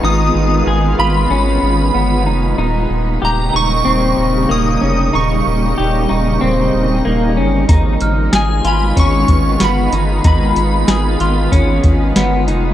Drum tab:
HH |--------|--------|--------|xxxxxxxx|
SD |--------|--------|--------|--o---o-|
BD |--------|--------|--------|o---oo--|

HH |xxxxxxxx|
SD |--o---o-|
BD |o---oo--|